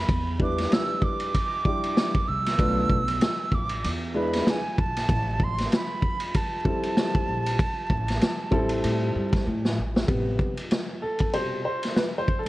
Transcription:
Already playing: B5
0.09 E2, kick, ride
0.40 G3 D4 E4 B4 D6, kick
0.58 snare, ride
0.72 E6, snare, hi-hat pedal, ride
1.02 D6, kick
1.20 ride
1.34 kick, ride
1.65 G3 D4 E4 G4, kick
1.83 ride
1.97 snare, hi-hat pedal, ride
2.15 kick
2.28 C2 E6
2.46 snare, ride
2.58 B1 A3 D4 F4 B4, kick, ride
2.90 B1, kick
3.08 ride
3.21 snare, hi-hat pedal, ride
3.52 A1 D6, kick
3.69 ride
3.84 E2, ride
4.14 G#3 D4 E4 B4 B5
4.33 snare, ride
4.47 G#5, snare, hi-hat pedal, ride
4.78 A#1 A5, kick
4.96 snare, ride
5.09 A1, kick, ride
5.40 C6, kick
5.58 snare, ride
5.72 B5, snare, hi-hat pedal, ride
6.02 kick
6.20 ride
6.34 A5, kick, ride
6.65 G3 C4 E4 A4, kick
6.83 ride
6.97 snare, hi-hat pedal, ride
7.15 kick
7.28 A#1
7.46 ride
7.59 kick, ride
7.90 A1, kick
8.08 snare, ride
8.21 snare, hi-hat pedal, ride
8.51 A1 G3 C4 E4 A4, kick
8.69 ride
8.84 A2, ride
9.15 G2
9.33 kick, snare, ride
9.47 A2
9.65 snare
9.78 A1
9.96 snare
10.08 A1 C3 G3 B3, kick, ride
10.39 kick
10.57 ride
10.71 snare, hi-hat pedal, ride
11.02 A4
11.18 kick, ride
11.33 B2 C3 G3 C5, ride
11.65 C5
11.83 snare, ride
11.96 B4, snare, hi-hat pedal, ride
12.18 C5
12.28 kick
12.39 A4

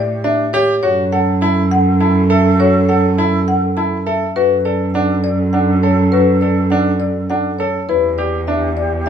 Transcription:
Already playing: A2 G4 D5
0.24 D4 E5
0.53 G4 C#5
0.83 F#2 F#4 A4 C#5
1.12 A4 F#5
1.41 E4 A5
1.71 F#5
2.00 E4 A5
2.30 A4 E5
2.59 F#4 C#5
2.89 A4 F#5
3.18 E4 A5
3.48 F#5
3.77 E4 A5
4.06 A4 E5
4.36 F#2 F#4 A4 B4
4.65 A4 D5
4.94 D4 F#5
5.24 D5
5.53 D4 F#5
5.83 A4 C#5
6.12 F#4 B4
6.41 A4 D5
6.70 D4 F#5
7.00 D5
7.30 D4 F#5
7.59 A4 C#5
7.89 E2 E4 G4 B4
8.18 G4 D5
8.47 D4 E5
8.77 D5
9.06 E5

